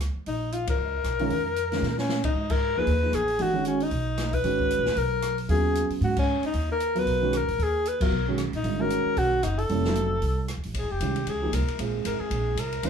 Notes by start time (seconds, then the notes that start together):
Already playing: C#2
0.00 cross-stick, closed hi-hat
0.16 muted upright bass stroke
0.26 A#1 D#4, open hi-hat
0.52 F4, closed hi-hat
0.67 G#1 A#4, kick, ride
0.78 C#2
1.04 B1, cross-stick, closed hi-hat
1.19 D#3 G#3 C#4 F4, open hi-hat
1.30 F2, open hi-hat
1.56 closed hi-hat
1.72 D#3 G#3 C#4 F4, snare, open hi-hat
1.82 A#2, snare
1.98 C#4, snare
2.09 snare
2.24 D#4, kick, ride
2.34 G#2
2.50 A#4, kick, crash
2.76 D#2 F3 A#3 D#4 G#4 B4
2.87 D#2, open hi-hat
3.03 F3 A#3 D#4 G#4
3.13 A1 G#4, cross-stick, closed hi-hat
3.28 open hi-hat
3.38 G#1 E3 A3 D4 F#4 G4, open hi-hat
3.53 D#3 G#3 C#4 F#4
3.65 C#4, closed hi-hat
3.80 D#4, open hi-hat
3.91 B1, open hi-hat
4.18 cross-stick, snare, closed hi-hat
4.33 B4, kick, open hi-hat
4.44 G#1 D#3 G#3 C#4 F#4, open hi-hat
4.59 kick
4.71 closed hi-hat
4.78 A#1
4.86 F#1, snare
4.96 B1 A#4, open hi-hat
5.22 cross-stick, closed hi-hat
5.38 open hi-hat
5.48 D#2 C#3 F#3 B3 F4 G#4, open hi-hat
5.75 closed hi-hat
5.90 muted upright bass stroke, open hi-hat
6.01 G#2 F#4, open hi-hat
6.17 C#4, kick, crash
6.43 D#4, muted upright bass stroke, open hi-hat
6.54 D#2, open hi-hat
6.72 A#4
6.80 closed hi-hat
6.95 F#3 B3 F4 A#4 B4, open hi-hat
7.06 B1, open hi-hat
7.21 D#3 G#3 C#4 F#4
7.33 cross-stick, closed hi-hat
7.37 A#4
7.48 A1, open hi-hat
7.58 D#2, open hi-hat
7.63 G#4
7.86 B4, closed hi-hat
8.00 G1 F#3 B3 F4 A#4, kick, crash
8.11 B1
8.28 D#3 G#3 C#4 F#4
8.38 cross-stick, closed hi-hat
8.52 A#1 D#4, open hi-hat
8.63 G#1 D3 G3 C4 F4, open hi-hat
8.79 D#3 G#3 C#4 F#4 A#4
8.90 closed hi-hat
9.05 muted upright bass stroke
9.17 B1 F#4, open hi-hat
9.43 F#1 D#4, cross-stick, closed hi-hat
9.59 A4, open hi-hat
9.69 F1 G3 A#3 C#4 E4, open hi-hat
9.84 F#3 A3 C4 D#4, snare
9.95 closed hi-hat
10.22 C2, open hi-hat
10.48 cross-stick, closed hi-hat
10.57 D#2
10.63 A1, open hi-hat
10.74 A#1, ride
10.79 G#1 G#4
10.91 F1 G4
11.00 C2 D#3 G#3 C#4 F4, hi-hat pedal, ride
11.16 ride
11.26 C#2 G#4, ride
11.42 F3 A#3 D#4 G4
11.53 C2 A#4, hi-hat pedal, ride
11.68 muted upright bass stroke, ride
11.79 A#1 G#3 C4 F4 G#4, ride
12.04 G#1 A#4, hi-hat pedal, ride
12.20 G#4, muted upright bass stroke
12.30 A#1, ride
12.56 C2, hi-hat pedal, ride
12.60 A#4
12.72 ride
12.83 C#2 D#3 G#3 C#4 F4, ride